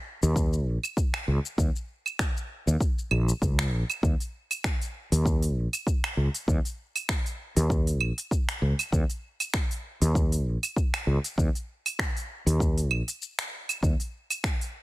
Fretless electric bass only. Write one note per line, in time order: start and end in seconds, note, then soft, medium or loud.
0.23 0.67 D#2 loud
0.67 0.77 A#1 medium
1.28 1.38 C#2 medium
1.58 1.69 D#2 loud
2.67 2.75 D#2 medium
3.11 3.31 A#1 medium
3.42 3.72 C#2 medium
3.72 3.83 A#1 medium
4.03 4.14 D#2 medium
5.12 5.56 D#2 medium
5.56 5.67 A#1 medium
6.17 6.28 C#2 medium
6.48 6.58 D#2 medium
7.57 8.00 D#2 loud
8.00 8.11 A#1 medium
8.62 8.73 C#2 medium
8.92 9.03 D#2 loud
10.02 10.46 D#2 medium
10.46 10.56 A#1 medium
11.07 11.18 C#2 medium
11.38 11.48 D#2 medium
12.46 12.91 D#2 medium
12.91 13.01 A#1 loud
13.82 13.93 D#2 medium